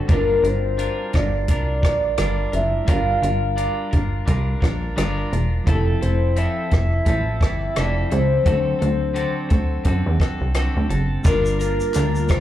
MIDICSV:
0, 0, Header, 1, 7, 480
1, 0, Start_track
1, 0, Tempo, 697837
1, 58, Time_signature, 4, 2, 24, 8
1, 8530, End_track
2, 0, Start_track
2, 0, Title_t, "Ambient pad"
2, 0, Program_c, 0, 92
2, 7742, Note_on_c, 0, 79, 82
2, 7744, Note_on_c, 0, 65, 76
2, 7744, Note_on_c, 0, 70, 86
2, 7744, Note_on_c, 0, 86, 91
2, 8530, Note_off_c, 0, 65, 0
2, 8530, Note_off_c, 0, 70, 0
2, 8530, Note_off_c, 0, 79, 0
2, 8530, Note_off_c, 0, 86, 0
2, 8530, End_track
3, 0, Start_track
3, 0, Title_t, "Soft synth lead"
3, 0, Program_c, 1, 80
3, 86, Note_on_c, 1, 70, 85
3, 322, Note_on_c, 1, 72, 101
3, 332, Note_off_c, 1, 70, 0
3, 802, Note_on_c, 1, 74, 93
3, 813, Note_off_c, 1, 72, 0
3, 1029, Note_off_c, 1, 74, 0
3, 1033, Note_on_c, 1, 74, 103
3, 1748, Note_on_c, 1, 76, 95
3, 1759, Note_off_c, 1, 74, 0
3, 1983, Note_off_c, 1, 76, 0
3, 1990, Note_on_c, 1, 77, 124
3, 2677, Note_off_c, 1, 77, 0
3, 3901, Note_on_c, 1, 69, 104
3, 4123, Note_off_c, 1, 69, 0
3, 4142, Note_on_c, 1, 72, 101
3, 4389, Note_on_c, 1, 76, 102
3, 4399, Note_off_c, 1, 72, 0
3, 4624, Note_off_c, 1, 76, 0
3, 4628, Note_on_c, 1, 76, 121
3, 5353, Note_on_c, 1, 74, 105
3, 5363, Note_off_c, 1, 76, 0
3, 5589, Note_on_c, 1, 72, 103
3, 5599, Note_off_c, 1, 74, 0
3, 7265, Note_off_c, 1, 72, 0
3, 7746, Note_on_c, 1, 70, 91
3, 7966, Note_off_c, 1, 70, 0
3, 7986, Note_on_c, 1, 70, 97
3, 8455, Note_on_c, 1, 72, 98
3, 8466, Note_off_c, 1, 70, 0
3, 8530, Note_off_c, 1, 72, 0
3, 8530, End_track
4, 0, Start_track
4, 0, Title_t, "Clean electric guitar"
4, 0, Program_c, 2, 27
4, 56, Note_on_c, 2, 55, 68
4, 59, Note_on_c, 2, 62, 75
4, 65, Note_on_c, 2, 65, 67
4, 67, Note_on_c, 2, 70, 74
4, 284, Note_off_c, 2, 70, 0
4, 292, Note_on_c, 2, 70, 43
4, 294, Note_off_c, 2, 65, 0
4, 297, Note_off_c, 2, 55, 0
4, 299, Note_off_c, 2, 62, 0
4, 303, Note_on_c, 2, 65, 42
4, 310, Note_on_c, 2, 62, 36
4, 531, Note_off_c, 2, 62, 0
4, 534, Note_on_c, 2, 55, 62
4, 535, Note_off_c, 2, 70, 0
4, 536, Note_off_c, 2, 65, 0
4, 539, Note_on_c, 2, 62, 68
4, 544, Note_on_c, 2, 65, 70
4, 548, Note_on_c, 2, 70, 76
4, 770, Note_off_c, 2, 70, 0
4, 776, Note_off_c, 2, 55, 0
4, 778, Note_off_c, 2, 65, 0
4, 778, Note_on_c, 2, 70, 44
4, 779, Note_off_c, 2, 62, 0
4, 787, Note_on_c, 2, 65, 45
4, 797, Note_on_c, 2, 62, 45
4, 1016, Note_off_c, 2, 62, 0
4, 1018, Note_off_c, 2, 70, 0
4, 1021, Note_on_c, 2, 55, 54
4, 1023, Note_off_c, 2, 65, 0
4, 1025, Note_on_c, 2, 62, 61
4, 1031, Note_on_c, 2, 65, 54
4, 1035, Note_on_c, 2, 70, 64
4, 1247, Note_off_c, 2, 70, 0
4, 1255, Note_on_c, 2, 70, 45
4, 1257, Note_off_c, 2, 65, 0
4, 1260, Note_off_c, 2, 55, 0
4, 1261, Note_off_c, 2, 62, 0
4, 1265, Note_on_c, 2, 65, 46
4, 1275, Note_on_c, 2, 62, 42
4, 1494, Note_off_c, 2, 62, 0
4, 1497, Note_off_c, 2, 70, 0
4, 1497, Note_on_c, 2, 55, 65
4, 1499, Note_off_c, 2, 65, 0
4, 1502, Note_on_c, 2, 62, 77
4, 1507, Note_on_c, 2, 65, 72
4, 1510, Note_on_c, 2, 70, 79
4, 1727, Note_off_c, 2, 70, 0
4, 1735, Note_on_c, 2, 70, 44
4, 1736, Note_off_c, 2, 65, 0
4, 1738, Note_off_c, 2, 55, 0
4, 1740, Note_off_c, 2, 62, 0
4, 1744, Note_on_c, 2, 65, 40
4, 1754, Note_on_c, 2, 62, 38
4, 1969, Note_off_c, 2, 62, 0
4, 1970, Note_off_c, 2, 65, 0
4, 1970, Note_on_c, 2, 55, 71
4, 1977, Note_off_c, 2, 70, 0
4, 1977, Note_on_c, 2, 62, 70
4, 1978, Note_on_c, 2, 65, 78
4, 1985, Note_on_c, 2, 70, 72
4, 2208, Note_off_c, 2, 70, 0
4, 2214, Note_off_c, 2, 55, 0
4, 2217, Note_on_c, 2, 70, 44
4, 2218, Note_off_c, 2, 62, 0
4, 2218, Note_off_c, 2, 65, 0
4, 2226, Note_on_c, 2, 65, 43
4, 2231, Note_on_c, 2, 62, 37
4, 2446, Note_off_c, 2, 62, 0
4, 2449, Note_on_c, 2, 55, 64
4, 2450, Note_off_c, 2, 65, 0
4, 2450, Note_off_c, 2, 70, 0
4, 2454, Note_on_c, 2, 62, 76
4, 2458, Note_on_c, 2, 65, 72
4, 2458, Note_on_c, 2, 70, 70
4, 2681, Note_off_c, 2, 70, 0
4, 2689, Note_on_c, 2, 70, 52
4, 2690, Note_off_c, 2, 65, 0
4, 2694, Note_off_c, 2, 55, 0
4, 2696, Note_off_c, 2, 62, 0
4, 2699, Note_on_c, 2, 65, 52
4, 2705, Note_on_c, 2, 62, 44
4, 2926, Note_off_c, 2, 62, 0
4, 2927, Note_on_c, 2, 55, 59
4, 2934, Note_off_c, 2, 70, 0
4, 2934, Note_on_c, 2, 62, 66
4, 2935, Note_off_c, 2, 65, 0
4, 2943, Note_on_c, 2, 65, 62
4, 2945, Note_on_c, 2, 70, 68
4, 3159, Note_off_c, 2, 70, 0
4, 3167, Note_off_c, 2, 65, 0
4, 3168, Note_on_c, 2, 70, 57
4, 3173, Note_off_c, 2, 55, 0
4, 3176, Note_off_c, 2, 62, 0
4, 3176, Note_on_c, 2, 65, 50
4, 3185, Note_on_c, 2, 62, 52
4, 3410, Note_off_c, 2, 62, 0
4, 3412, Note_on_c, 2, 55, 76
4, 3413, Note_off_c, 2, 65, 0
4, 3413, Note_off_c, 2, 70, 0
4, 3418, Note_on_c, 2, 62, 86
4, 3422, Note_on_c, 2, 65, 89
4, 3425, Note_on_c, 2, 70, 100
4, 3645, Note_off_c, 2, 70, 0
4, 3654, Note_on_c, 2, 70, 49
4, 3656, Note_off_c, 2, 55, 0
4, 3658, Note_off_c, 2, 62, 0
4, 3658, Note_off_c, 2, 65, 0
4, 3666, Note_on_c, 2, 65, 47
4, 3672, Note_on_c, 2, 62, 42
4, 3894, Note_on_c, 2, 53, 68
4, 3896, Note_off_c, 2, 62, 0
4, 3896, Note_off_c, 2, 70, 0
4, 3899, Note_on_c, 2, 60, 67
4, 3901, Note_off_c, 2, 65, 0
4, 3903, Note_on_c, 2, 64, 70
4, 3909, Note_on_c, 2, 69, 86
4, 4126, Note_off_c, 2, 69, 0
4, 4135, Note_on_c, 2, 69, 50
4, 4136, Note_off_c, 2, 53, 0
4, 4137, Note_off_c, 2, 64, 0
4, 4139, Note_off_c, 2, 60, 0
4, 4146, Note_on_c, 2, 64, 45
4, 4154, Note_on_c, 2, 60, 42
4, 4370, Note_off_c, 2, 60, 0
4, 4372, Note_off_c, 2, 64, 0
4, 4375, Note_on_c, 2, 53, 66
4, 4377, Note_off_c, 2, 69, 0
4, 4378, Note_on_c, 2, 60, 73
4, 4380, Note_on_c, 2, 64, 77
4, 4386, Note_on_c, 2, 69, 68
4, 4605, Note_off_c, 2, 69, 0
4, 4613, Note_on_c, 2, 69, 52
4, 4615, Note_off_c, 2, 64, 0
4, 4617, Note_off_c, 2, 53, 0
4, 4618, Note_off_c, 2, 60, 0
4, 4624, Note_on_c, 2, 64, 48
4, 4630, Note_on_c, 2, 60, 37
4, 4852, Note_on_c, 2, 53, 57
4, 4854, Note_off_c, 2, 60, 0
4, 4856, Note_off_c, 2, 69, 0
4, 4859, Note_off_c, 2, 64, 0
4, 4862, Note_on_c, 2, 60, 58
4, 4867, Note_on_c, 2, 64, 55
4, 4870, Note_on_c, 2, 69, 61
4, 5085, Note_off_c, 2, 69, 0
4, 5094, Note_on_c, 2, 69, 49
4, 5095, Note_off_c, 2, 53, 0
4, 5097, Note_off_c, 2, 64, 0
4, 5101, Note_off_c, 2, 60, 0
4, 5105, Note_on_c, 2, 64, 44
4, 5111, Note_on_c, 2, 60, 39
4, 5336, Note_off_c, 2, 60, 0
4, 5336, Note_off_c, 2, 69, 0
4, 5340, Note_on_c, 2, 53, 77
4, 5342, Note_off_c, 2, 64, 0
4, 5344, Note_on_c, 2, 60, 73
4, 5350, Note_on_c, 2, 64, 85
4, 5351, Note_on_c, 2, 69, 82
4, 5566, Note_off_c, 2, 69, 0
4, 5575, Note_on_c, 2, 69, 49
4, 5577, Note_off_c, 2, 64, 0
4, 5580, Note_off_c, 2, 53, 0
4, 5582, Note_off_c, 2, 60, 0
4, 5585, Note_on_c, 2, 64, 44
4, 5595, Note_on_c, 2, 60, 40
4, 5808, Note_off_c, 2, 60, 0
4, 5812, Note_on_c, 2, 50, 70
4, 5816, Note_on_c, 2, 60, 72
4, 5817, Note_off_c, 2, 69, 0
4, 5820, Note_off_c, 2, 64, 0
4, 5823, Note_on_c, 2, 66, 78
4, 5827, Note_on_c, 2, 69, 76
4, 6037, Note_off_c, 2, 69, 0
4, 6045, Note_on_c, 2, 69, 46
4, 6046, Note_off_c, 2, 66, 0
4, 6054, Note_off_c, 2, 60, 0
4, 6054, Note_on_c, 2, 66, 38
4, 6056, Note_off_c, 2, 50, 0
4, 6063, Note_on_c, 2, 60, 38
4, 6282, Note_off_c, 2, 60, 0
4, 6286, Note_on_c, 2, 50, 80
4, 6288, Note_off_c, 2, 66, 0
4, 6290, Note_on_c, 2, 60, 83
4, 6292, Note_off_c, 2, 69, 0
4, 6296, Note_on_c, 2, 66, 80
4, 6301, Note_on_c, 2, 69, 81
4, 6519, Note_off_c, 2, 69, 0
4, 6527, Note_off_c, 2, 66, 0
4, 6527, Note_on_c, 2, 69, 60
4, 6533, Note_off_c, 2, 50, 0
4, 6535, Note_off_c, 2, 60, 0
4, 6536, Note_on_c, 2, 66, 58
4, 6545, Note_on_c, 2, 60, 46
4, 6768, Note_on_c, 2, 50, 53
4, 6770, Note_off_c, 2, 60, 0
4, 6773, Note_off_c, 2, 66, 0
4, 6773, Note_off_c, 2, 69, 0
4, 6778, Note_on_c, 2, 60, 64
4, 6781, Note_on_c, 2, 66, 70
4, 6789, Note_on_c, 2, 69, 62
4, 7008, Note_off_c, 2, 69, 0
4, 7014, Note_off_c, 2, 50, 0
4, 7017, Note_off_c, 2, 66, 0
4, 7017, Note_on_c, 2, 69, 52
4, 7019, Note_off_c, 2, 60, 0
4, 7025, Note_on_c, 2, 66, 48
4, 7033, Note_on_c, 2, 60, 49
4, 7253, Note_off_c, 2, 60, 0
4, 7256, Note_on_c, 2, 50, 74
4, 7257, Note_off_c, 2, 66, 0
4, 7258, Note_off_c, 2, 69, 0
4, 7261, Note_on_c, 2, 60, 83
4, 7266, Note_on_c, 2, 66, 82
4, 7266, Note_on_c, 2, 69, 82
4, 7486, Note_off_c, 2, 69, 0
4, 7494, Note_on_c, 2, 69, 57
4, 7497, Note_off_c, 2, 66, 0
4, 7498, Note_off_c, 2, 50, 0
4, 7500, Note_off_c, 2, 60, 0
4, 7505, Note_on_c, 2, 66, 44
4, 7511, Note_on_c, 2, 60, 41
4, 7734, Note_on_c, 2, 55, 83
4, 7736, Note_off_c, 2, 60, 0
4, 7737, Note_off_c, 2, 66, 0
4, 7737, Note_off_c, 2, 69, 0
4, 7738, Note_on_c, 2, 62, 85
4, 7739, Note_on_c, 2, 65, 87
4, 7745, Note_on_c, 2, 70, 88
4, 7965, Note_off_c, 2, 70, 0
4, 7973, Note_on_c, 2, 70, 52
4, 7977, Note_off_c, 2, 55, 0
4, 7978, Note_off_c, 2, 65, 0
4, 7979, Note_off_c, 2, 62, 0
4, 7986, Note_on_c, 2, 65, 46
4, 7991, Note_on_c, 2, 62, 41
4, 8213, Note_off_c, 2, 62, 0
4, 8214, Note_on_c, 2, 55, 58
4, 8216, Note_off_c, 2, 70, 0
4, 8219, Note_off_c, 2, 65, 0
4, 8222, Note_on_c, 2, 62, 64
4, 8228, Note_on_c, 2, 65, 59
4, 8237, Note_on_c, 2, 70, 58
4, 8446, Note_off_c, 2, 70, 0
4, 8454, Note_on_c, 2, 70, 61
4, 8456, Note_off_c, 2, 65, 0
4, 8457, Note_off_c, 2, 55, 0
4, 8461, Note_off_c, 2, 62, 0
4, 8464, Note_on_c, 2, 65, 52
4, 8473, Note_on_c, 2, 62, 43
4, 8530, Note_off_c, 2, 62, 0
4, 8530, Note_off_c, 2, 65, 0
4, 8530, Note_off_c, 2, 70, 0
4, 8530, End_track
5, 0, Start_track
5, 0, Title_t, "Tine electric piano"
5, 0, Program_c, 3, 4
5, 0, Control_c, 3, 64, 127
5, 0, Note_on_c, 3, 62, 46
5, 0, Note_on_c, 3, 66, 57
5, 0, Note_on_c, 3, 69, 57
5, 0, Note_on_c, 3, 72, 55
5, 48, Note_on_c, 3, 55, 53
5, 59, Note_off_c, 3, 62, 0
5, 59, Note_on_c, 3, 62, 48
5, 68, Control_c, 3, 64, 0
5, 73, Note_off_c, 3, 72, 0
5, 73, Note_on_c, 3, 65, 49
5, 74, Note_off_c, 3, 69, 0
5, 84, Note_on_c, 3, 70, 60
5, 176, Control_c, 3, 64, 127
5, 193, Note_off_c, 3, 66, 0
5, 1946, Note_off_c, 3, 55, 0
5, 1951, Note_off_c, 3, 62, 0
5, 1958, Note_off_c, 3, 65, 0
5, 1959, Note_on_c, 3, 55, 58
5, 1964, Note_off_c, 3, 70, 0
5, 1973, Note_on_c, 3, 62, 55
5, 1983, Note_on_c, 3, 65, 53
5, 1997, Note_on_c, 3, 70, 64
5, 3862, Note_off_c, 3, 55, 0
5, 3869, Note_off_c, 3, 62, 0
5, 3874, Note_off_c, 3, 65, 0
5, 3879, Note_on_c, 3, 53, 56
5, 3881, Note_off_c, 3, 70, 0
5, 3891, Note_on_c, 3, 60, 52
5, 3907, Note_on_c, 3, 64, 57
5, 3909, Control_c, 3, 64, 0
5, 3915, Note_on_c, 3, 67, 50
5, 3959, Note_on_c, 3, 69, 62
5, 3961, Note_off_c, 3, 67, 0
5, 4018, Control_c, 3, 64, 127
5, 5782, Note_off_c, 3, 53, 0
5, 5788, Note_off_c, 3, 60, 0
5, 5796, Note_off_c, 3, 64, 0
5, 5796, Note_on_c, 3, 54, 51
5, 5811, Note_on_c, 3, 60, 52
5, 5820, Note_on_c, 3, 62, 56
5, 5822, Note_off_c, 3, 69, 0
5, 5829, Control_c, 3, 64, 0
5, 5831, Note_on_c, 3, 69, 58
5, 5960, Control_c, 3, 64, 127
5, 7701, Note_off_c, 3, 54, 0
5, 7708, Note_off_c, 3, 60, 0
5, 7713, Note_off_c, 3, 62, 0
5, 7718, Note_off_c, 3, 69, 0
5, 7725, Note_on_c, 3, 55, 58
5, 7735, Note_on_c, 3, 62, 54
5, 7749, Control_c, 3, 64, 0
5, 7749, Note_on_c, 3, 65, 56
5, 7758, Note_on_c, 3, 70, 62
5, 7880, Control_c, 3, 64, 127
5, 8530, Note_off_c, 3, 55, 0
5, 8530, Note_off_c, 3, 62, 0
5, 8530, Note_off_c, 3, 65, 0
5, 8530, Note_off_c, 3, 70, 0
5, 8530, End_track
6, 0, Start_track
6, 0, Title_t, "Analog synth bass"
6, 0, Program_c, 4, 38
6, 65, Note_on_c, 4, 31, 108
6, 254, Note_off_c, 4, 31, 0
6, 296, Note_on_c, 4, 31, 88
6, 604, Note_off_c, 4, 31, 0
6, 786, Note_on_c, 4, 31, 100
6, 1023, Note_on_c, 4, 36, 101
6, 1034, Note_off_c, 4, 31, 0
6, 1260, Note_on_c, 4, 34, 85
6, 1270, Note_off_c, 4, 36, 0
6, 1451, Note_off_c, 4, 34, 0
6, 1504, Note_on_c, 4, 31, 74
6, 1694, Note_off_c, 4, 31, 0
6, 1743, Note_on_c, 4, 30, 86
6, 1933, Note_off_c, 4, 30, 0
6, 1984, Note_on_c, 4, 31, 112
6, 2174, Note_off_c, 4, 31, 0
6, 2217, Note_on_c, 4, 31, 89
6, 2525, Note_off_c, 4, 31, 0
6, 2705, Note_on_c, 4, 31, 84
6, 2894, Note_off_c, 4, 31, 0
6, 2941, Note_on_c, 4, 36, 103
6, 3132, Note_off_c, 4, 36, 0
6, 3180, Note_on_c, 4, 34, 98
6, 3371, Note_off_c, 4, 34, 0
6, 3421, Note_on_c, 4, 31, 79
6, 3612, Note_off_c, 4, 31, 0
6, 3663, Note_on_c, 4, 28, 84
6, 3853, Note_off_c, 4, 28, 0
6, 3901, Note_on_c, 4, 29, 119
6, 4092, Note_off_c, 4, 29, 0
6, 4141, Note_on_c, 4, 29, 90
6, 4447, Note_off_c, 4, 29, 0
6, 4620, Note_on_c, 4, 29, 90
6, 4812, Note_off_c, 4, 29, 0
6, 4859, Note_on_c, 4, 33, 101
6, 5096, Note_on_c, 4, 31, 94
6, 5106, Note_off_c, 4, 33, 0
6, 5289, Note_off_c, 4, 31, 0
6, 5346, Note_on_c, 4, 29, 79
6, 5535, Note_off_c, 4, 29, 0
6, 5584, Note_on_c, 4, 37, 102
6, 5774, Note_off_c, 4, 37, 0
6, 5820, Note_on_c, 4, 38, 94
6, 6012, Note_off_c, 4, 38, 0
6, 6065, Note_on_c, 4, 38, 98
6, 6370, Note_off_c, 4, 38, 0
6, 6542, Note_on_c, 4, 38, 93
6, 6733, Note_off_c, 4, 38, 0
6, 6777, Note_on_c, 4, 42, 99
6, 6894, Note_off_c, 4, 42, 0
6, 6922, Note_on_c, 4, 40, 93
6, 7000, Note_off_c, 4, 40, 0
6, 7159, Note_on_c, 4, 36, 80
6, 7353, Note_off_c, 4, 36, 0
6, 7405, Note_on_c, 4, 38, 90
6, 7482, Note_off_c, 4, 38, 0
6, 7495, Note_on_c, 4, 30, 95
6, 7689, Note_off_c, 4, 30, 0
6, 7738, Note_on_c, 4, 31, 106
6, 8123, Note_off_c, 4, 31, 0
6, 8224, Note_on_c, 4, 38, 98
6, 8461, Note_on_c, 4, 36, 93
6, 8471, Note_off_c, 4, 38, 0
6, 8530, Note_off_c, 4, 36, 0
6, 8530, End_track
7, 0, Start_track
7, 0, Title_t, "Drums"
7, 59, Note_on_c, 9, 42, 70
7, 62, Note_on_c, 9, 36, 106
7, 128, Note_off_c, 9, 42, 0
7, 131, Note_off_c, 9, 36, 0
7, 305, Note_on_c, 9, 42, 44
7, 373, Note_off_c, 9, 42, 0
7, 540, Note_on_c, 9, 42, 48
7, 609, Note_off_c, 9, 42, 0
7, 778, Note_on_c, 9, 42, 38
7, 785, Note_on_c, 9, 36, 77
7, 792, Note_on_c, 9, 37, 81
7, 846, Note_off_c, 9, 42, 0
7, 853, Note_off_c, 9, 36, 0
7, 861, Note_off_c, 9, 37, 0
7, 1018, Note_on_c, 9, 42, 60
7, 1021, Note_on_c, 9, 36, 67
7, 1087, Note_off_c, 9, 42, 0
7, 1090, Note_off_c, 9, 36, 0
7, 1259, Note_on_c, 9, 36, 81
7, 1267, Note_on_c, 9, 42, 41
7, 1270, Note_on_c, 9, 37, 78
7, 1328, Note_off_c, 9, 36, 0
7, 1336, Note_off_c, 9, 42, 0
7, 1339, Note_off_c, 9, 37, 0
7, 1496, Note_on_c, 9, 42, 69
7, 1500, Note_on_c, 9, 37, 93
7, 1565, Note_off_c, 9, 42, 0
7, 1569, Note_off_c, 9, 37, 0
7, 1740, Note_on_c, 9, 42, 44
7, 1809, Note_off_c, 9, 42, 0
7, 1977, Note_on_c, 9, 42, 75
7, 1981, Note_on_c, 9, 36, 101
7, 2046, Note_off_c, 9, 42, 0
7, 2050, Note_off_c, 9, 36, 0
7, 2223, Note_on_c, 9, 42, 47
7, 2292, Note_off_c, 9, 42, 0
7, 2459, Note_on_c, 9, 42, 51
7, 2528, Note_off_c, 9, 42, 0
7, 2700, Note_on_c, 9, 42, 36
7, 2704, Note_on_c, 9, 36, 74
7, 2769, Note_off_c, 9, 42, 0
7, 2773, Note_off_c, 9, 36, 0
7, 2939, Note_on_c, 9, 42, 56
7, 2941, Note_on_c, 9, 36, 73
7, 3008, Note_off_c, 9, 42, 0
7, 3009, Note_off_c, 9, 36, 0
7, 3179, Note_on_c, 9, 36, 78
7, 3187, Note_on_c, 9, 42, 36
7, 3190, Note_on_c, 9, 37, 80
7, 3248, Note_off_c, 9, 36, 0
7, 3256, Note_off_c, 9, 42, 0
7, 3259, Note_off_c, 9, 37, 0
7, 3422, Note_on_c, 9, 42, 69
7, 3426, Note_on_c, 9, 37, 80
7, 3491, Note_off_c, 9, 42, 0
7, 3495, Note_off_c, 9, 37, 0
7, 3665, Note_on_c, 9, 42, 44
7, 3734, Note_off_c, 9, 42, 0
7, 3900, Note_on_c, 9, 36, 109
7, 3900, Note_on_c, 9, 42, 73
7, 3968, Note_off_c, 9, 36, 0
7, 3968, Note_off_c, 9, 42, 0
7, 4143, Note_on_c, 9, 42, 49
7, 4212, Note_off_c, 9, 42, 0
7, 4377, Note_on_c, 9, 42, 49
7, 4445, Note_off_c, 9, 42, 0
7, 4616, Note_on_c, 9, 42, 35
7, 4622, Note_on_c, 9, 36, 72
7, 4631, Note_on_c, 9, 37, 68
7, 4685, Note_off_c, 9, 42, 0
7, 4690, Note_off_c, 9, 36, 0
7, 4700, Note_off_c, 9, 37, 0
7, 4855, Note_on_c, 9, 42, 59
7, 4858, Note_on_c, 9, 36, 74
7, 4924, Note_off_c, 9, 42, 0
7, 4926, Note_off_c, 9, 36, 0
7, 5096, Note_on_c, 9, 36, 86
7, 5104, Note_on_c, 9, 42, 36
7, 5107, Note_on_c, 9, 37, 76
7, 5165, Note_off_c, 9, 36, 0
7, 5173, Note_off_c, 9, 42, 0
7, 5176, Note_off_c, 9, 37, 0
7, 5337, Note_on_c, 9, 42, 72
7, 5341, Note_on_c, 9, 37, 82
7, 5406, Note_off_c, 9, 42, 0
7, 5410, Note_off_c, 9, 37, 0
7, 5580, Note_on_c, 9, 42, 45
7, 5648, Note_off_c, 9, 42, 0
7, 5817, Note_on_c, 9, 42, 74
7, 5818, Note_on_c, 9, 36, 104
7, 5886, Note_off_c, 9, 42, 0
7, 5887, Note_off_c, 9, 36, 0
7, 6064, Note_on_c, 9, 42, 50
7, 6133, Note_off_c, 9, 42, 0
7, 6297, Note_on_c, 9, 42, 49
7, 6366, Note_off_c, 9, 42, 0
7, 6534, Note_on_c, 9, 42, 39
7, 6541, Note_on_c, 9, 36, 77
7, 6603, Note_off_c, 9, 42, 0
7, 6610, Note_off_c, 9, 36, 0
7, 6772, Note_on_c, 9, 42, 55
7, 6777, Note_on_c, 9, 36, 71
7, 6840, Note_off_c, 9, 42, 0
7, 6845, Note_off_c, 9, 36, 0
7, 7015, Note_on_c, 9, 36, 78
7, 7021, Note_on_c, 9, 42, 41
7, 7024, Note_on_c, 9, 37, 76
7, 7084, Note_off_c, 9, 36, 0
7, 7090, Note_off_c, 9, 42, 0
7, 7093, Note_off_c, 9, 37, 0
7, 7252, Note_on_c, 9, 42, 66
7, 7256, Note_on_c, 9, 37, 84
7, 7321, Note_off_c, 9, 42, 0
7, 7325, Note_off_c, 9, 37, 0
7, 7499, Note_on_c, 9, 42, 41
7, 7567, Note_off_c, 9, 42, 0
7, 7736, Note_on_c, 9, 42, 75
7, 7736, Note_on_c, 9, 82, 78
7, 7738, Note_on_c, 9, 36, 123
7, 7805, Note_off_c, 9, 42, 0
7, 7805, Note_off_c, 9, 82, 0
7, 7807, Note_off_c, 9, 36, 0
7, 7880, Note_on_c, 9, 82, 53
7, 7949, Note_off_c, 9, 82, 0
7, 7983, Note_on_c, 9, 42, 49
7, 7983, Note_on_c, 9, 82, 52
7, 8052, Note_off_c, 9, 42, 0
7, 8052, Note_off_c, 9, 82, 0
7, 8119, Note_on_c, 9, 82, 53
7, 8188, Note_off_c, 9, 82, 0
7, 8213, Note_on_c, 9, 39, 96
7, 8213, Note_on_c, 9, 42, 58
7, 8213, Note_on_c, 9, 82, 57
7, 8282, Note_off_c, 9, 39, 0
7, 8282, Note_off_c, 9, 42, 0
7, 8282, Note_off_c, 9, 82, 0
7, 8359, Note_on_c, 9, 82, 40
7, 8428, Note_off_c, 9, 82, 0
7, 8450, Note_on_c, 9, 42, 43
7, 8450, Note_on_c, 9, 82, 45
7, 8459, Note_on_c, 9, 36, 76
7, 8465, Note_on_c, 9, 37, 78
7, 8519, Note_off_c, 9, 42, 0
7, 8519, Note_off_c, 9, 82, 0
7, 8528, Note_off_c, 9, 36, 0
7, 8530, Note_off_c, 9, 37, 0
7, 8530, End_track
0, 0, End_of_file